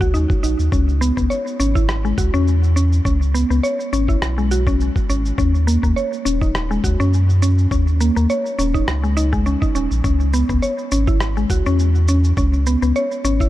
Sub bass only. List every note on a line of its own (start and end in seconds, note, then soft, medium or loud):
0.00 0.14 C#2 medium
0.14 0.27 D#2 medium
0.43 0.56 A#1 medium
0.59 0.69 D#2 medium
0.72 1.12 C#2 loud
1.17 1.28 C#2 medium
1.60 2.13 G#1 loud
2.18 2.30 C#2 medium
2.34 3.01 E2 loud
3.05 3.45 C#2 loud
3.50 3.61 C#2 medium
3.93 4.16 G#1 loud
4.22 4.91 B1 medium
5.09 5.33 G#1 medium
5.38 5.78 D#2 loud
5.83 5.94 D#2 loud
6.26 6.79 D#1 medium
6.84 6.96 D#2 medium
7.00 7.67 F#2 loud
7.71 8.11 D#2 loud
8.17 8.27 D#2 loud
8.59 8.82 D#1 loud
8.88 9.56 C#2 medium
9.75 9.88 D#1 medium
9.91 10.02 A#1 loud
10.04 10.44 C#2 medium
10.49 10.60 C#2 loud
10.92 11.45 G#1 loud
11.50 11.62 C#2 medium
11.66 12.33 E2 loud
12.37 12.77 C#2 loud
12.82 12.93 C#2 medium
13.24 13.48 G#1 loud